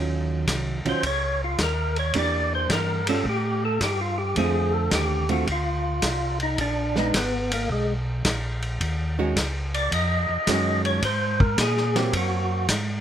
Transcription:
0.00 0.46 D#2 medium
0.00 0.78 D#3 soft
0.00 0.78 F#3 soft
0.00 0.78 C#4 medium
0.00 0.79 F4 medium
0.47 0.82 C2 medium
0.47 kick soft
0.47 snare medium
0.47 hi-hat pedal medium
0.47 ride medium
0.85 0.94 C2 soft
0.85 1.02 D#3 medium
0.85 1.02 F#3 medium
0.85 1.02 C#4 medium
0.85 1.02 F4 medium
0.85 1.05 C5 medium
0.85 ride soft
1.03 1.57 C#2 medium
1.03 1.42 C#5 medium
1.03 kick soft
1.03 ride medium
1.44 1.60 F4 medium
1.58 2.13 D#2 medium
1.58 kick soft
1.58 snare medium
1.58 hi-hat pedal medium
1.58 ride medium
1.63 1.97 A#4 medium
1.96 2.15 C#5 medium
1.96 ride soft
2.14 2.68 E2 medium
2.14 3.00 E3 medium
2.14 3.00 A#3 medium
2.14 3.01 D4 medium
2.14 3.01 G4 medium
2.14 kick soft
2.14 ride medium
2.19 2.53 D5 medium
2.55 2.71 C5 medium
2.69 3.23 G2 medium
2.69 3.08 A#4 medium
2.69 kick soft
2.69 snare medium
2.69 hi-hat pedal soft
2.69 ride medium
3.07 3.24 G3 medium
3.07 3.24 C#4 medium
3.07 3.25 F4 medium
3.07 3.26 A4 medium
3.07 ride medium
3.25 3.79 A2 medium
3.25 kick soft
3.29 3.64 G4 medium
3.65 3.81 A4 medium
3.80 4.34 G2 medium
3.80 4.00 G4 medium
3.80 kick soft
3.80 snare medium
3.80 hi-hat pedal medium
3.80 ride medium
4.01 4.18 F4 medium
4.18 4.36 G4 medium
4.35 4.90 F2 medium
4.35 5.23 D3 medium
4.35 5.22 A3 medium
4.35 5.23 C4 medium
4.35 5.23 F4 medium
4.35 4.73 G#4 medium
4.35 kick soft
4.35 ride medium
4.73 4.91 A4 loud
4.91 5.45 D#2 medium
4.91 5.30 G4 medium
4.91 kick soft
4.91 snare medium
4.91 hi-hat pedal soft
4.91 ride medium
5.29 5.45 D3 medium
5.29 5.45 A3 medium
5.29 5.46 C4 medium
5.29 5.46 F4 medium
5.29 5.48 F#4 medium
5.29 ride soft
5.47 6.01 D2 medium
5.47 kick soft
5.47 ride medium
5.52 6.38 F4 medium
6.02 6.56 C2 medium
6.02 kick soft
6.02 snare medium
6.02 hi-hat pedal medium
6.02 ride medium
6.40 6.59 D#4 medium
6.40 ride soft
6.58 7.12 A#1 medium
6.58 6.96 D4 medium
6.58 kick soft
6.58 ride medium
6.96 7.12 G#3 medium
6.96 7.13 B3 medium
6.96 7.13 D4 medium
6.96 7.15 D#4 medium
6.96 snare soft
7.13 7.67 G#1 medium
7.13 7.52 B3 medium
7.13 kick soft
7.13 snare medium
7.13 hi-hat pedal medium
7.13 ride medium
7.52 7.70 A#3 medium
7.52 ride medium
7.69 8.23 B1 medium
7.69 7.94 G#3 medium
7.69 kick soft
8.25 8.79 A#1 medium
8.25 kick soft
8.25 snare medium
8.25 hi-hat pedal medium
8.25 ride medium
8.62 ride soft
8.81 9.35 D#2 medium
8.81 kick soft
8.81 ride medium
9.19 9.35 D#3 medium
9.19 9.35 G#3 medium
9.19 9.35 C#4 medium
9.19 9.35 F#4 medium
9.36 9.90 C#2 medium
9.36 kick soft
9.36 snare medium
9.36 hi-hat pedal medium
9.36 ride medium
9.74 9.91 D5 medium
9.74 ride soft
9.91 10.26 F2 medium
9.91 10.82 D#5 medium
9.91 kick soft
9.91 ride medium
10.29 10.38 F2 soft
10.47 11.01 F#2 medium
10.47 11.04 D#3 medium
10.47 11.04 G#3 medium
10.47 11.04 C#4 medium
10.47 11.04 F#4 medium
10.47 kick soft
10.47 snare medium
10.47 hi-hat pedal medium
10.47 ride medium
10.85 11.03 C#5 medium
10.85 ride soft
11.02 11.56 G#2 medium
11.02 11.40 C5 medium
11.02 kick soft
11.02 ride medium
11.40 11.58 A#4 medium
11.40 kick medium
11.58 12.12 A#2 medium
11.58 11.96 G#4 medium
11.58 kick soft
11.58 snare medium
11.58 hi-hat pedal soft
11.58 ride medium
11.77 snare soft
11.96 12.66 F#3 medium
11.96 12.66 A#3 medium
11.96 12.66 C4 medium
11.96 12.13 G4 medium
11.96 snare medium
11.96 ride medium
12.13 12.68 F#2 medium
12.13 12.67 F#4 medium
12.13 kick soft
12.13 ride medium
12.69 13.01 G#2 medium
12.69 kick soft
12.69 snare medium
12.69 hi-hat pedal medium
12.69 ride medium

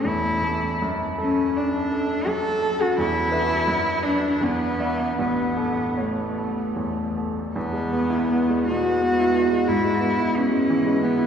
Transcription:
0.00 0.78 A1 soft
0.00 0.44 A4 soft
0.00 0.84 C#5 soft
0.05 0.67 E2 soft
0.05 0.82 E4 medium
0.44 0.82 A4 soft
0.82 2.95 F#2 soft
1.18 1.59 C#4 medium
1.18 1.77 A4 soft
1.56 2.29 D4 medium
1.56 2.14 D5 soft
1.92 2.49 A4 soft
2.27 2.84 F#3 soft
2.27 2.83 A4 medium
2.63 2.99 A4 soft
2.81 2.98 F#4 medium
2.98 3.65 E2 soft
2.98 4.06 E4 medium
3.32 3.64 B4 soft
3.32 3.64 E5 soft
3.67 4.40 F#2 soft
4.02 4.45 D4 medium
4.02 4.37 D5 soft
4.41 5.16 E2 soft
4.41 5.20 B3 medium
4.80 5.15 D5 soft
4.80 5.15 E5 soft
5.18 7.52 A1 soft
5.18 6.02 B3 medium
5.57 6.21 A4 soft
5.97 7.19 A3 soft
5.97 6.61 C#5 soft
6.38 7.01 A4 soft
6.76 7.41 E2 soft
7.18 7.56 A4 soft
7.56 9.64 E2 soft
7.56 8.64 B3 medium
7.73 8.03 G#3 soft
7.92 8.23 B3 soft
8.10 8.42 E4 soft
8.30 8.61 B3 soft
8.49 8.79 G#3 soft
8.68 8.96 B2 soft
8.68 9.69 F#4 medium
8.85 9.12 G#3 soft
9.01 9.28 B3 soft
9.20 9.45 E4 soft
9.35 9.61 B3 soft
9.52 9.68 G#3 soft
9.67 11.27 G#2 soft
9.67 10.39 E4 medium
9.84 10.12 G#3 soft
10.00 10.28 B3 soft
10.18 10.46 E4 soft
10.34 10.63 B3 soft
10.34 11.05 C#4 medium
10.52 10.80 G#3 soft
10.70 10.97 E3 soft
10.86 11.13 G#3 soft
11.03 11.27 B3 soft
11.03 11.27 B3 medium
11.18 11.27 E4 soft

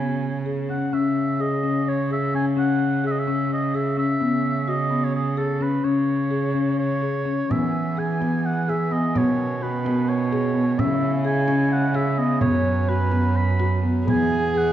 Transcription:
0.00 0.93 C#3 medium
0.00 0.24 B3 medium
0.00 0.45 G#5 medium
0.46 0.59 G#4 medium
0.69 0.82 C#4 medium
0.69 0.95 F#5 medium
0.93 4.22 C#3 medium
0.93 1.19 C#4 medium
0.93 1.42 E5 medium
1.40 1.53 G#4 medium
1.40 1.90 D#5 medium
1.64 1.89 C#4 medium
1.88 2.11 C#5 medium
2.11 2.23 G#4 medium
2.11 2.33 E5 medium
2.34 2.47 C#4 medium
2.34 2.45 G#5 medium
2.57 2.82 C#4 medium
2.57 3.02 F#5 medium
3.04 3.17 G#4 medium
3.04 3.13 E5 medium
3.11 3.21 D#5 medium
3.19 3.51 E5 medium
3.27 3.53 C#4 medium
3.53 3.77 D#5 medium
3.74 3.87 G#4 medium
3.74 3.97 E5 medium
3.97 4.10 C#4 medium
3.97 4.70 E5 medium
4.21 5.84 C#3 medium
4.21 4.46 B3 medium
4.68 4.80 F#4 medium
4.68 5.05 D#5 medium
4.91 5.16 B3 medium
5.03 5.14 C#5 medium
5.15 5.39 G#4 medium
5.37 5.50 G#4 medium
5.37 5.63 A4 medium
5.61 5.73 C#4 medium
5.61 5.86 B4 medium
5.84 7.47 C#3 medium
5.84 6.10 C#4 medium
5.84 6.78 C#5 medium
6.31 6.44 G#4 medium
6.54 6.80 C#4 medium
6.79 7.52 C#5 medium
7.02 7.15 G#4 medium
7.25 7.39 C#4 medium
7.50 9.17 E3 medium
7.50 9.14 E3 medium
7.50 7.76 B3 medium
7.50 10.75 B3 soft
7.50 9.14 G#4 medium
7.50 8.00 E5 medium
7.50 frame drum medium
7.74 frame drum soft
7.97 8.10 G#4 medium
7.97 8.46 G#5 medium
8.21 8.46 B3 medium
8.21 frame drum soft
8.45 8.70 F#5 medium
8.68 8.81 G#4 medium
8.68 8.93 E5 medium
8.68 frame drum soft
8.91 9.04 B3 medium
8.91 9.18 D#5 medium
8.91 frame drum soft
9.15 10.80 B2 medium
9.15 10.77 D#3 medium
9.15 9.40 B3 medium
9.15 10.77 C#4 medium
9.15 9.64 C#5 medium
9.15 frame drum medium
9.39 frame drum soft
9.61 9.74 F#4 medium
9.61 10.10 B4 medium
9.85 10.10 B3 medium
9.85 frame drum soft
10.09 10.80 C#5 medium
10.32 10.44 G#4 medium
10.32 frame drum soft
10.55 10.67 B3 medium
10.55 frame drum soft
10.78 12.43 C#3 medium
10.78 12.41 C#3 medium
10.78 12.41 G#3 medium
10.78 11.03 C#4 medium
10.78 12.41 E4 medium
10.78 11.12 E5 medium
10.78 frame drum medium
11.02 frame drum soft
11.25 11.37 G#4 medium
11.25 11.73 G#5 medium
11.48 11.73 C#4 medium
11.48 frame drum soft
11.72 11.97 F#5 medium
11.94 12.07 G#4 medium
11.94 12.20 E5 medium
11.94 frame drum soft
12.18 12.31 B3 medium
12.18 12.40 D#5 medium
12.41 14.09 F#2 medium
12.41 14.06 F#3 medium
12.41 12.67 B3 medium
12.41 14.06 C#4 medium
12.41 14.06 B4 medium
12.41 12.90 C#5 medium
12.41 frame drum medium
12.89 13.02 F#4 medium
12.89 13.38 B4 medium
13.12 13.38 B3 medium
13.12 frame drum soft
13.36 13.81 B5 medium
13.59 13.73 F#4 medium
13.59 frame drum soft
13.84 13.96 B3 medium
13.84 frame drum soft
14.07 14.73 E2 medium
14.07 14.73 E3 medium
14.07 14.33 B3 medium
14.07 14.73 B3 medium
14.07 14.73 G#4 medium
14.07 14.58 G#5 medium
14.07 frame drum medium
14.32 frame drum soft
14.54 14.67 G#4 medium
14.54 14.73 F#5 medium

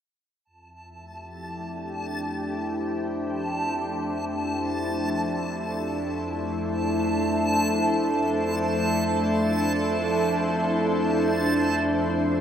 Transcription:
0.45 12.41 F2 medium
0.45 11.86 A5 medium
0.65 12.41 E4 medium
0.96 12.41 A3 medium
0.96 6.81 G4 medium
1.41 12.41 D4 medium
2.47 12.41 C5 medium
6.54 12.41 A4 medium
11.87 12.41 A5 medium

